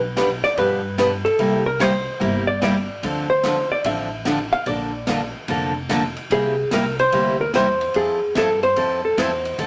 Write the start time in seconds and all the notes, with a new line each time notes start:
Already playing: B1 B4
0.16 B2 F3 B3 D4 G4 B4, kick, snare, hi-hat pedal, ride
0.44 D5, snare, ride
0.57 G2 B2 F3 B3 D4 G4 B4, kick, ride
0.98 B2 F3 B3 D4 G4 B4, kick, snare, hi-hat pedal, ride
1.25 A4, ride
1.39 C2 C3 G3 A#3 E4 G4, kick, ride
1.66 A#4
1.79 C3 G3 A#3 E4 G4 C5, kick, snare, hi-hat pedal, ride
2.20 G1 C3 G3 A#3 E4 G4, kick, ride
2.47 D5
2.61 C3 G3 A#3 E4 G4 D5, kick, snare, hi-hat pedal, ride
3.03 D2 D3 F3 C4 D4 A4, kick, ride
3.30 C5
3.43 D3 F3 C4 D4 A4, kick, snare, hi-hat pedal, ride
3.72 D5
3.84 A1 D3 F3 C4 D4 A4 E5, kick, ride
4.25 D3 F3 C4 D4 A4, kick, snare, hi-hat pedal, ride
4.52 F5, ride
4.66 A#1 D3 F3 A#3 D4 A4 D5, kick, ride
5.07 D3 F3 A#3 D4 A4, kick, snare, hi-hat pedal, ride
5.48 F1 D3 F3 A#3 D4 A4, kick, ride
5.89 D3 F3 A#3 D4 A4, kick, snare, hi-hat pedal, ride
6.16 ride
6.30 C2 C3 G3 A#3 E4 G4 G#4, kick, ride
6.71 C2 C3 G3 A#3 E4 G4 A#4, kick, snare, hi-hat pedal, ride
6.99 C5, ride
7.12 D2 C3 G3 A#3 E4 G4, kick, ride
7.41 A#4
7.54 E2 C3 G3 A#3 E4 G4 C5, kick, snare, hi-hat pedal, ride
7.81 ride
7.94 F2 F3 C4 E4 G#4 A4, kick, ride
8.35 G2 F3 C4 E4 A4, kick, snare, hi-hat pedal, ride
8.63 C5, ride
8.76 F2 F3 C4 E4 A4, kick, ride
9.05 A4
9.17 E2 F3 C4 E4 A4 C5, kick, snare, hi-hat pedal, ride
9.45 ride
9.58 D2 D3 F3 C4 D4 A4, kick, ride